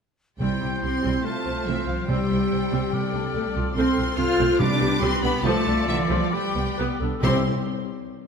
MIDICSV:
0, 0, Header, 1, 11, 480
1, 0, Start_track
1, 0, Key_signature, 0, "major"
1, 0, Tempo, 421053
1, 459, Time_signature, 4, 2, 24, 8
1, 6214, Tempo, 447094
1, 9241, End_track
2, 0, Start_track
2, 0, Title_t, "Flute"
2, 0, Program_c, 0, 73
2, 455, Note_on_c, 0, 91, 36
2, 1427, Note_on_c, 0, 89, 36
2, 1444, Note_off_c, 0, 91, 0
2, 2373, Note_off_c, 0, 89, 0
2, 2380, Note_on_c, 0, 88, 38
2, 3346, Note_on_c, 0, 89, 41
2, 3364, Note_off_c, 0, 88, 0
2, 4296, Note_off_c, 0, 89, 0
2, 4301, Note_on_c, 0, 89, 56
2, 4740, Note_off_c, 0, 89, 0
2, 4768, Note_on_c, 0, 89, 54
2, 5232, Note_on_c, 0, 86, 63
2, 5249, Note_off_c, 0, 89, 0
2, 6208, Note_off_c, 0, 86, 0
2, 6213, Note_on_c, 0, 86, 74
2, 7136, Note_off_c, 0, 86, 0
2, 7155, Note_on_c, 0, 86, 55
2, 7874, Note_off_c, 0, 86, 0
2, 8135, Note_on_c, 0, 84, 77
2, 8401, Note_off_c, 0, 84, 0
2, 9241, End_track
3, 0, Start_track
3, 0, Title_t, "Violin section"
3, 0, Program_c, 1, 48
3, 458, Note_on_c, 1, 79, 45
3, 910, Note_off_c, 1, 79, 0
3, 939, Note_on_c, 1, 84, 56
3, 1413, Note_off_c, 1, 84, 0
3, 1428, Note_on_c, 1, 81, 57
3, 1895, Note_off_c, 1, 81, 0
3, 1900, Note_on_c, 1, 76, 56
3, 2141, Note_off_c, 1, 76, 0
3, 2142, Note_on_c, 1, 77, 45
3, 2384, Note_off_c, 1, 77, 0
3, 2395, Note_on_c, 1, 79, 57
3, 4027, Note_off_c, 1, 79, 0
3, 4286, Note_on_c, 1, 84, 76
3, 4731, Note_off_c, 1, 84, 0
3, 4766, Note_on_c, 1, 89, 82
3, 5233, Note_on_c, 1, 86, 94
3, 5244, Note_off_c, 1, 89, 0
3, 5712, Note_off_c, 1, 86, 0
3, 5714, Note_on_c, 1, 84, 109
3, 5961, Note_on_c, 1, 83, 83
3, 5964, Note_off_c, 1, 84, 0
3, 6201, Note_on_c, 1, 81, 94
3, 6205, Note_off_c, 1, 83, 0
3, 6673, Note_off_c, 1, 81, 0
3, 6677, Note_on_c, 1, 76, 91
3, 6763, Note_off_c, 1, 76, 0
3, 7048, Note_on_c, 1, 77, 55
3, 7094, Note_off_c, 1, 77, 0
3, 7169, Note_on_c, 1, 79, 73
3, 7640, Note_off_c, 1, 79, 0
3, 8132, Note_on_c, 1, 84, 87
3, 8400, Note_off_c, 1, 84, 0
3, 9241, End_track
4, 0, Start_track
4, 0, Title_t, "Oboe"
4, 0, Program_c, 2, 68
4, 462, Note_on_c, 2, 72, 41
4, 3297, Note_off_c, 2, 72, 0
4, 3344, Note_on_c, 2, 74, 43
4, 4276, Note_off_c, 2, 74, 0
4, 4299, Note_on_c, 2, 72, 49
4, 4738, Note_off_c, 2, 72, 0
4, 4772, Note_on_c, 2, 72, 63
4, 5241, Note_on_c, 2, 71, 70
4, 5258, Note_off_c, 2, 72, 0
4, 6212, Note_off_c, 2, 71, 0
4, 6219, Note_on_c, 2, 69, 69
4, 7154, Note_on_c, 2, 71, 57
4, 7171, Note_off_c, 2, 69, 0
4, 7888, Note_off_c, 2, 71, 0
4, 8132, Note_on_c, 2, 76, 68
4, 8333, Note_off_c, 2, 76, 0
4, 9241, End_track
5, 0, Start_track
5, 0, Title_t, "Violin section"
5, 0, Program_c, 3, 48
5, 447, Note_on_c, 3, 67, 35
5, 449, Note_on_c, 3, 72, 37
5, 1374, Note_off_c, 3, 67, 0
5, 1433, Note_on_c, 3, 65, 33
5, 2382, Note_on_c, 3, 67, 39
5, 2388, Note_off_c, 3, 65, 0
5, 3290, Note_off_c, 3, 72, 0
5, 3321, Note_off_c, 3, 67, 0
5, 3343, Note_on_c, 3, 69, 42
5, 3343, Note_on_c, 3, 74, 40
5, 4294, Note_off_c, 3, 74, 0
5, 4295, Note_on_c, 3, 72, 58
5, 5228, Note_off_c, 3, 72, 0
5, 5247, Note_off_c, 3, 69, 0
5, 5250, Note_on_c, 3, 71, 58
5, 5251, Note_on_c, 3, 67, 58
5, 6198, Note_off_c, 3, 67, 0
5, 6215, Note_on_c, 3, 74, 68
5, 6217, Note_off_c, 3, 71, 0
5, 6217, Note_on_c, 3, 65, 61
5, 7149, Note_on_c, 3, 67, 54
5, 7157, Note_off_c, 3, 65, 0
5, 7868, Note_off_c, 3, 74, 0
5, 7898, Note_off_c, 3, 67, 0
5, 8124, Note_on_c, 3, 67, 68
5, 8131, Note_on_c, 3, 72, 70
5, 8395, Note_off_c, 3, 67, 0
5, 8399, Note_off_c, 3, 72, 0
5, 9241, End_track
6, 0, Start_track
6, 0, Title_t, "Clarinet"
6, 0, Program_c, 4, 71
6, 456, Note_on_c, 4, 64, 34
6, 1432, Note_on_c, 4, 65, 41
6, 1449, Note_off_c, 4, 64, 0
6, 2389, Note_on_c, 4, 67, 36
6, 2406, Note_off_c, 4, 65, 0
6, 3340, Note_on_c, 4, 69, 45
6, 3357, Note_off_c, 4, 67, 0
6, 4274, Note_off_c, 4, 69, 0
6, 4281, Note_on_c, 4, 69, 53
6, 4729, Note_off_c, 4, 69, 0
6, 4760, Note_on_c, 4, 69, 60
6, 5243, Note_on_c, 4, 67, 66
6, 5260, Note_off_c, 4, 69, 0
6, 6193, Note_off_c, 4, 67, 0
6, 6200, Note_on_c, 4, 65, 65
6, 7158, Note_on_c, 4, 67, 63
6, 7174, Note_off_c, 4, 65, 0
6, 7596, Note_off_c, 4, 67, 0
6, 7637, Note_on_c, 4, 71, 60
6, 7748, Note_off_c, 4, 71, 0
6, 7879, Note_on_c, 4, 69, 58
6, 8118, Note_off_c, 4, 69, 0
6, 8124, Note_on_c, 4, 67, 65
6, 8328, Note_off_c, 4, 67, 0
6, 9241, End_track
7, 0, Start_track
7, 0, Title_t, "Viola section"
7, 0, Program_c, 5, 48
7, 449, Note_on_c, 5, 55, 40
7, 450, Note_on_c, 5, 60, 42
7, 680, Note_off_c, 5, 55, 0
7, 680, Note_off_c, 5, 60, 0
7, 692, Note_on_c, 5, 64, 27
7, 695, Note_on_c, 5, 60, 28
7, 784, Note_off_c, 5, 64, 0
7, 786, Note_off_c, 5, 60, 0
7, 946, Note_on_c, 5, 60, 29
7, 948, Note_off_c, 5, 60, 0
7, 948, Note_on_c, 5, 60, 30
7, 1039, Note_off_c, 5, 60, 0
7, 1176, Note_on_c, 5, 60, 41
7, 1181, Note_on_c, 5, 55, 48
7, 1404, Note_off_c, 5, 60, 0
7, 1407, Note_off_c, 5, 55, 0
7, 1657, Note_on_c, 5, 60, 37
7, 1659, Note_off_c, 5, 60, 0
7, 1659, Note_on_c, 5, 60, 41
7, 1750, Note_off_c, 5, 60, 0
7, 1893, Note_on_c, 5, 60, 45
7, 1894, Note_on_c, 5, 57, 44
7, 2121, Note_off_c, 5, 57, 0
7, 2121, Note_off_c, 5, 60, 0
7, 2134, Note_on_c, 5, 65, 32
7, 2135, Note_on_c, 5, 60, 41
7, 2225, Note_off_c, 5, 65, 0
7, 2226, Note_off_c, 5, 60, 0
7, 2375, Note_on_c, 5, 55, 47
7, 2376, Note_on_c, 5, 60, 46
7, 2603, Note_off_c, 5, 55, 0
7, 2603, Note_off_c, 5, 60, 0
7, 2620, Note_on_c, 5, 64, 34
7, 2622, Note_on_c, 5, 60, 35
7, 2711, Note_off_c, 5, 64, 0
7, 2713, Note_off_c, 5, 60, 0
7, 2853, Note_on_c, 5, 60, 39
7, 2859, Note_off_c, 5, 60, 0
7, 2859, Note_on_c, 5, 60, 32
7, 2951, Note_off_c, 5, 60, 0
7, 3093, Note_on_c, 5, 55, 52
7, 3097, Note_on_c, 5, 60, 52
7, 3319, Note_off_c, 5, 55, 0
7, 3321, Note_off_c, 5, 60, 0
7, 3582, Note_on_c, 5, 57, 39
7, 3583, Note_on_c, 5, 62, 45
7, 3673, Note_off_c, 5, 57, 0
7, 3674, Note_off_c, 5, 62, 0
7, 3807, Note_on_c, 5, 57, 54
7, 3812, Note_off_c, 5, 57, 0
7, 3812, Note_on_c, 5, 57, 55
7, 4036, Note_off_c, 5, 57, 0
7, 4057, Note_on_c, 5, 57, 42
7, 4063, Note_on_c, 5, 65, 53
7, 4148, Note_off_c, 5, 57, 0
7, 4154, Note_off_c, 5, 65, 0
7, 4294, Note_on_c, 5, 57, 64
7, 4294, Note_on_c, 5, 60, 67
7, 4515, Note_off_c, 5, 57, 0
7, 4515, Note_off_c, 5, 60, 0
7, 4538, Note_on_c, 5, 60, 49
7, 4538, Note_on_c, 5, 65, 51
7, 4629, Note_off_c, 5, 60, 0
7, 4629, Note_off_c, 5, 65, 0
7, 4766, Note_on_c, 5, 60, 53
7, 4767, Note_off_c, 5, 60, 0
7, 4767, Note_on_c, 5, 60, 47
7, 4858, Note_off_c, 5, 60, 0
7, 5005, Note_on_c, 5, 57, 70
7, 5007, Note_on_c, 5, 60, 68
7, 5228, Note_off_c, 5, 57, 0
7, 5229, Note_off_c, 5, 60, 0
7, 5485, Note_on_c, 5, 55, 65
7, 5491, Note_on_c, 5, 59, 65
7, 5576, Note_off_c, 5, 55, 0
7, 5582, Note_off_c, 5, 59, 0
7, 5718, Note_on_c, 5, 55, 70
7, 5719, Note_off_c, 5, 55, 0
7, 5719, Note_on_c, 5, 55, 80
7, 5949, Note_off_c, 5, 55, 0
7, 5972, Note_on_c, 5, 55, 55
7, 5974, Note_on_c, 5, 62, 59
7, 6064, Note_off_c, 5, 55, 0
7, 6065, Note_off_c, 5, 62, 0
7, 6206, Note_on_c, 5, 53, 82
7, 6207, Note_on_c, 5, 57, 79
7, 6426, Note_off_c, 5, 53, 0
7, 6426, Note_off_c, 5, 57, 0
7, 6441, Note_on_c, 5, 62, 46
7, 6446, Note_on_c, 5, 57, 55
7, 6527, Note_off_c, 5, 62, 0
7, 6532, Note_off_c, 5, 57, 0
7, 6683, Note_on_c, 5, 57, 48
7, 6769, Note_off_c, 5, 57, 0
7, 6905, Note_on_c, 5, 53, 67
7, 6906, Note_on_c, 5, 57, 66
7, 7134, Note_off_c, 5, 53, 0
7, 7134, Note_off_c, 5, 57, 0
7, 7392, Note_on_c, 5, 59, 48
7, 7395, Note_off_c, 5, 59, 0
7, 7395, Note_on_c, 5, 59, 52
7, 7481, Note_off_c, 5, 59, 0
7, 7642, Note_on_c, 5, 55, 55
7, 7643, Note_on_c, 5, 59, 70
7, 7870, Note_off_c, 5, 55, 0
7, 7871, Note_off_c, 5, 59, 0
7, 7892, Note_on_c, 5, 62, 49
7, 7893, Note_on_c, 5, 59, 47
7, 7978, Note_off_c, 5, 62, 0
7, 7979, Note_off_c, 5, 59, 0
7, 8133, Note_on_c, 5, 64, 74
7, 8135, Note_on_c, 5, 60, 79
7, 8401, Note_off_c, 5, 60, 0
7, 8401, Note_off_c, 5, 64, 0
7, 9241, End_track
8, 0, Start_track
8, 0, Title_t, "Cello section"
8, 0, Program_c, 6, 48
8, 454, Note_on_c, 6, 55, 40
8, 907, Note_off_c, 6, 55, 0
8, 935, Note_on_c, 6, 60, 52
8, 1412, Note_off_c, 6, 60, 0
8, 1427, Note_on_c, 6, 57, 41
8, 1895, Note_off_c, 6, 57, 0
8, 1915, Note_on_c, 6, 52, 46
8, 2144, Note_on_c, 6, 53, 39
8, 2149, Note_off_c, 6, 52, 0
8, 2380, Note_off_c, 6, 53, 0
8, 2389, Note_on_c, 6, 55, 52
8, 4024, Note_off_c, 6, 55, 0
8, 4292, Note_on_c, 6, 60, 68
8, 4734, Note_off_c, 6, 60, 0
8, 4769, Note_on_c, 6, 65, 80
8, 5237, Note_off_c, 6, 65, 0
8, 5244, Note_on_c, 6, 62, 75
8, 5726, Note_on_c, 6, 60, 78
8, 5727, Note_off_c, 6, 62, 0
8, 5965, Note_off_c, 6, 60, 0
8, 5968, Note_on_c, 6, 59, 76
8, 6213, Note_on_c, 6, 57, 80
8, 6214, Note_off_c, 6, 59, 0
8, 6673, Note_on_c, 6, 52, 80
8, 6679, Note_off_c, 6, 57, 0
8, 7025, Note_off_c, 6, 52, 0
8, 7028, Note_on_c, 6, 53, 43
8, 7150, Note_on_c, 6, 55, 52
8, 7153, Note_off_c, 6, 53, 0
8, 7641, Note_off_c, 6, 55, 0
8, 8132, Note_on_c, 6, 60, 72
8, 8400, Note_off_c, 6, 60, 0
8, 9241, End_track
9, 0, Start_track
9, 0, Title_t, "French horn section"
9, 0, Program_c, 7, 60
9, 470, Note_on_c, 7, 55, 46
9, 916, Note_off_c, 7, 55, 0
9, 948, Note_on_c, 7, 60, 49
9, 1418, Note_off_c, 7, 60, 0
9, 1420, Note_on_c, 7, 57, 50
9, 1901, Note_off_c, 7, 57, 0
9, 1911, Note_on_c, 7, 52, 44
9, 2017, Note_off_c, 7, 52, 0
9, 2144, Note_on_c, 7, 53, 38
9, 2380, Note_off_c, 7, 53, 0
9, 2380, Note_on_c, 7, 55, 50
9, 4053, Note_off_c, 7, 55, 0
9, 4299, Note_on_c, 7, 60, 64
9, 4738, Note_off_c, 7, 60, 0
9, 4760, Note_on_c, 7, 65, 76
9, 5232, Note_off_c, 7, 65, 0
9, 5240, Note_on_c, 7, 62, 78
9, 5716, Note_on_c, 7, 60, 70
9, 5725, Note_off_c, 7, 62, 0
9, 5828, Note_off_c, 7, 60, 0
9, 5947, Note_on_c, 7, 59, 81
9, 6062, Note_off_c, 7, 59, 0
9, 6197, Note_on_c, 7, 57, 74
9, 6662, Note_off_c, 7, 57, 0
9, 6677, Note_on_c, 7, 50, 78
9, 6838, Note_off_c, 7, 50, 0
9, 7027, Note_on_c, 7, 53, 47
9, 7141, Note_on_c, 7, 55, 59
9, 7149, Note_off_c, 7, 53, 0
9, 7636, Note_off_c, 7, 55, 0
9, 8139, Note_on_c, 7, 60, 69
9, 8338, Note_off_c, 7, 60, 0
9, 9241, End_track
10, 0, Start_track
10, 0, Title_t, "Timpani"
10, 0, Program_c, 8, 47
10, 456, Note_on_c, 8, 48, 46
10, 1138, Note_off_c, 8, 48, 0
10, 2377, Note_on_c, 8, 48, 55
10, 3054, Note_off_c, 8, 48, 0
10, 3340, Note_on_c, 8, 48, 51
10, 4009, Note_off_c, 8, 48, 0
10, 5241, Note_on_c, 8, 48, 71
10, 5923, Note_off_c, 8, 48, 0
10, 8125, Note_on_c, 8, 48, 84
10, 8351, Note_off_c, 8, 48, 0
10, 9241, End_track
11, 0, Start_track
11, 0, Title_t, "Double bass section"
11, 0, Program_c, 10, 48
11, 455, Note_on_c, 10, 36, 45
11, 546, Note_off_c, 10, 36, 0
11, 700, Note_on_c, 10, 36, 32
11, 791, Note_off_c, 10, 36, 0
11, 945, Note_on_c, 10, 36, 34
11, 1036, Note_off_c, 10, 36, 0
11, 1183, Note_on_c, 10, 36, 51
11, 1274, Note_off_c, 10, 36, 0
11, 1661, Note_on_c, 10, 36, 33
11, 1752, Note_off_c, 10, 36, 0
11, 1901, Note_on_c, 10, 36, 49
11, 1993, Note_off_c, 10, 36, 0
11, 2136, Note_on_c, 10, 36, 34
11, 2227, Note_off_c, 10, 36, 0
11, 2380, Note_on_c, 10, 36, 48
11, 2471, Note_off_c, 10, 36, 0
11, 2622, Note_on_c, 10, 36, 37
11, 2713, Note_off_c, 10, 36, 0
11, 2863, Note_on_c, 10, 36, 37
11, 2954, Note_off_c, 10, 36, 0
11, 3098, Note_on_c, 10, 36, 55
11, 3189, Note_off_c, 10, 36, 0
11, 3580, Note_on_c, 10, 36, 39
11, 3671, Note_off_c, 10, 36, 0
11, 3817, Note_on_c, 10, 36, 56
11, 3908, Note_off_c, 10, 36, 0
11, 4053, Note_on_c, 10, 36, 42
11, 4144, Note_off_c, 10, 36, 0
11, 4292, Note_on_c, 10, 36, 65
11, 4383, Note_off_c, 10, 36, 0
11, 4531, Note_on_c, 10, 36, 51
11, 4622, Note_off_c, 10, 36, 0
11, 4763, Note_on_c, 10, 36, 54
11, 4854, Note_off_c, 10, 36, 0
11, 4998, Note_on_c, 10, 36, 75
11, 5089, Note_off_c, 10, 36, 0
11, 5477, Note_on_c, 10, 36, 55
11, 5569, Note_off_c, 10, 36, 0
11, 5715, Note_on_c, 10, 36, 74
11, 5806, Note_off_c, 10, 36, 0
11, 5958, Note_on_c, 10, 36, 60
11, 6049, Note_off_c, 10, 36, 0
11, 6202, Note_on_c, 10, 36, 87
11, 6288, Note_off_c, 10, 36, 0
11, 6436, Note_on_c, 10, 36, 55
11, 6522, Note_off_c, 10, 36, 0
11, 6669, Note_on_c, 10, 36, 58
11, 6754, Note_off_c, 10, 36, 0
11, 6904, Note_on_c, 10, 36, 79
11, 6990, Note_off_c, 10, 36, 0
11, 7389, Note_on_c, 10, 36, 46
11, 7474, Note_off_c, 10, 36, 0
11, 7643, Note_on_c, 10, 36, 60
11, 7729, Note_off_c, 10, 36, 0
11, 7885, Note_on_c, 10, 36, 43
11, 7971, Note_off_c, 10, 36, 0
11, 8129, Note_on_c, 10, 36, 84
11, 8398, Note_off_c, 10, 36, 0
11, 9241, End_track
0, 0, End_of_file